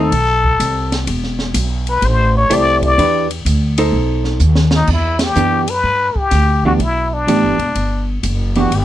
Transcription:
0.00 0.11 D#2 medium
0.00 0.11 A3 medium
0.00 0.11 C4 medium
0.00 0.11 D#4 medium
0.00 1.05 A4 loud
0.12 0.58 B1 medium
0.12 kick soft
0.12 ride medium
0.44 kick medium
0.60 1.06 C2 medium
0.60 hi-hat pedal medium
0.60 ride medium
0.92 snare soft
0.92 ride soft
1.07 1.54 E1 medium
1.07 kick soft
1.07 ride medium
1.24 snare soft
1.39 snare soft
1.54 2.01 B1 medium
1.54 kick soft
1.54 hi-hat pedal medium
1.54 ride medium
1.87 2.07 B4 medium
1.87 ride soft
2.02 2.49 A1 medium
2.02 2.36 C5 medium
2.02 kick soft
2.02 ride medium
2.37 2.55 C#5 loud
2.50 2.96 C2 medium
2.50 2.98 A3 medium
2.50 2.98 E4 medium
2.50 2.98 G4 medium
2.50 2.98 C5 medium
2.50 2.83 D5 loud
2.50 kick soft
2.50 hi-hat pedal medium
2.50 ride medium
2.82 3.27 D5 loud
2.82 kick medium
2.82 ride soft
2.98 3.44 E2 medium
2.98 3.27 E3 soft
2.98 3.27 D4 medium
2.98 3.27 G4 medium
2.98 3.27 B4 medium
2.98 ride medium
3.31 ride medium
3.45 3.92 D2 medium
3.45 kick soft
3.45 hi-hat pedal medium
3.45 ride medium
3.78 4.38 D#4 medium
3.78 4.39 A4 medium
3.78 4.39 C5 medium
3.78 ride medium
3.92 4.39 B1 medium
3.92 kick soft
4.24 snare soft
4.40 4.87 D#2 medium
4.40 hi-hat pedal medium
4.55 snare medium
4.71 snare medium
4.76 4.89 D#4 medium
4.87 5.35 E2 medium
4.87 kick medium
4.87 crash medium
4.93 5.25 E4 medium
5.19 snare medium
5.19 ride medium
5.24 5.71 G4 loud
5.35 5.83 F#2 medium
5.35 5.65 E3 medium
5.35 5.65 B3 medium
5.35 5.65 D4 medium
5.35 5.66 G4 medium
5.35 hi-hat pedal medium
5.68 6.19 B4 loud
5.68 ride medium
5.83 6.14 G2 medium
5.83 kick soft
6.15 6.65 G4 medium
6.15 muted upright bass stroke soft
6.15 kick medium
6.31 6.78 D2 medium
6.31 kick soft
6.31 snare soft
6.31 hi-hat pedal medium
6.31 ride medium
6.64 6.79 E3 medium
6.64 6.79 B3 medium
6.64 6.79 D4 medium
6.64 6.73 F#4 medium
6.64 6.80 G4 medium
6.64 kick soft
6.79 7.26 B1 medium
6.79 7.15 E4 medium
6.79 kick soft
6.79 ride soft
7.13 8.08 D4 medium
7.27 7.43 A1 medium
7.27 7.57 E3 medium
7.27 7.57 B3 medium
7.27 7.57 D4 medium
7.27 7.57 G4 medium
7.27 kick soft
7.27 hi-hat pedal soft
7.27 ride medium
7.43 7.58 G1 medium
7.59 7.74 E1 medium
7.59 ride soft
7.75 8.22 G1 medium
7.75 kick soft
7.75 ride medium
8.23 8.70 F#1 medium
8.23 kick soft
8.23 hi-hat pedal medium
8.23 ride medium
8.55 8.70 E3 medium
8.55 8.70 B3 medium
8.55 8.70 D4 medium
8.55 8.76 F#4 medium
8.55 8.71 G4 medium
8.55 ride soft
8.71 8.85 G1 medium
8.71 8.85 G4 medium
8.71 kick soft
8.71 ride medium

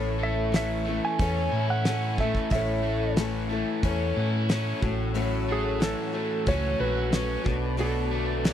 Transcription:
0.00 0.98 A1 loud
0.00 0.54 A2 medium
0.00 1.19 E3 medium
0.00 0.18 A3 medium
0.00 0.52 A3 medium
0.00 7.41 A3 medium
0.00 0.53 C#4 medium
0.00 0.54 E4 medium
0.00 0.54 A4 medium
0.00 2.48 E5 medium
0.00 4.77 C#6 medium
0.19 0.85 A3 medium
0.23 0.55 E5 medium
0.52 3.17 E3 medium
0.52 0.86 A3 medium
0.52 0.87 C#4 medium
0.52 0.87 E4 medium
0.52 0.86 A4 medium
0.52 snare loud
0.52 open hi-hat soft
0.56 1.06 E5 medium
0.85 2.18 A3 medium
0.85 1.20 C#4 soft
0.85 1.20 E4 soft
0.85 1.20 A4 soft
0.90 1.20 A3 soft
1.05 1.66 G#5 medium
1.19 1.47 E2 medium
1.19 1.85 A2 medium
1.19 2.53 E3 medium
1.19 1.86 A3 medium
1.19 1.88 C#4 medium
1.19 1.88 E4 medium
1.19 1.89 A4 medium
1.19 kick loud
1.19 open hi-hat soft
1.52 2.36 A2 medium
1.52 4.16 E4 medium
1.70 2.20 F#5 medium
1.85 2.19 A3 medium
1.85 2.19 C#4 medium
1.85 2.19 E4 medium
1.85 snare medium
1.85 open hi-hat soft
1.89 2.18 A4 medium
2.18 2.53 A3 soft
2.18 2.53 C#4 soft
2.18 2.52 E4 soft
2.18 2.52 A4 soft
2.18 2.50 E5 medium
2.18 kick medium
2.35 kick medium
2.50 3.62 A1 medium
2.50 3.18 A2 medium
2.50 3.84 E3 medium
2.50 3.14 E5 medium
2.50 4.80 F#5 medium
2.50 kick loud
2.50 open hi-hat medium
2.54 3.17 A3 medium
2.54 3.18 C#4 medium
2.54 3.19 E4 medium
2.54 3.20 A4 medium
2.83 3.49 A3 medium
3.17 4.82 E3 medium
3.17 3.51 A3 medium
3.17 3.51 C#4 medium
3.17 3.50 E4 medium
3.17 3.48 A4 medium
3.17 snare loud
3.17 open hi-hat soft
3.50 3.83 A3 soft
3.50 3.83 C#4 soft
3.50 3.84 E4 soft
3.50 3.83 A4 soft
3.83 4.11 E2 medium
3.83 4.49 A2 medium
3.83 4.50 E3 medium
3.83 4.49 A3 medium
3.83 4.49 C#4 medium
3.83 4.49 E4 medium
3.83 4.51 A4 medium
3.83 kick loud
3.83 open hi-hat medium
4.16 4.72 A2 medium
4.16 4.82 E4 medium
4.49 4.82 A3 medium
4.49 4.81 C#4 medium
4.49 4.82 E4 medium
4.49 4.81 A4 medium
4.49 snare loud
4.49 open hi-hat medium
4.81 5.93 A1 medium
4.81 5.13 A2 medium
4.81 5.14 F#3 soft
4.81 5.14 A3 soft
4.81 5.15 C#4 medium
4.81 5.15 F#4 soft
4.81 7.43 F#5 medium
4.81 7.43 E6 medium
4.81 kick loud
5.14 5.81 A2 medium
5.14 5.81 E3 medium
5.14 5.80 F#3 medium
5.14 5.81 A3 medium
5.14 5.80 C#4 medium
5.14 5.82 F#4 loud
5.14 open hi-hat medium
5.49 6.13 A3 medium
5.49 5.81 G#4 medium
5.80 7.45 E3 medium
5.80 6.14 F#3 medium
5.80 6.13 A3 medium
5.80 6.12 C#4 medium
5.80 6.11 F#4 medium
5.80 6.50 A4 medium
5.80 snare loud
5.80 open hi-hat soft
6.12 6.45 F#3 soft
6.12 6.47 A3 soft
6.12 6.47 C#4 soft
6.12 6.46 F#4 soft
6.46 6.75 C#2 medium
6.46 7.13 A2 medium
6.46 7.13 E3 medium
6.46 7.11 F#3 medium
6.46 7.13 A3 medium
6.46 7.13 C#4 medium
6.46 7.13 F#4 medium
6.46 6.79 C#5 loud
6.46 kick loud
6.46 open hi-hat soft
6.80 7.35 A#1 medium
6.80 7.46 F#4 medium
6.80 7.75 B4 medium
7.12 7.46 F#3 medium
7.12 7.46 A3 medium
7.12 7.45 C#4 medium
7.12 7.43 F#4 medium
7.12 snare loud
7.12 open hi-hat medium
7.44 8.53 B1 medium
7.44 7.77 B2 medium
7.44 7.77 A3 soft
7.44 7.77 D4 soft
7.44 7.78 F#4 medium
7.44 8.53 B4 medium
7.44 8.53 A5 medium
7.44 8.53 D6 medium
7.44 kick loud
7.77 8.44 B2 medium
7.77 8.43 F#3 medium
7.77 8.45 A3 medium
7.77 8.45 D4 medium
7.77 8.45 F#4 medium
7.77 8.53 A4 medium
7.77 open hi-hat medium
8.11 8.53 A3 medium
8.44 8.53 F#3 medium
8.44 8.53 A3 medium
8.44 8.53 D4 medium
8.44 8.53 F#4 medium
8.44 snare loud
8.44 open hi-hat medium

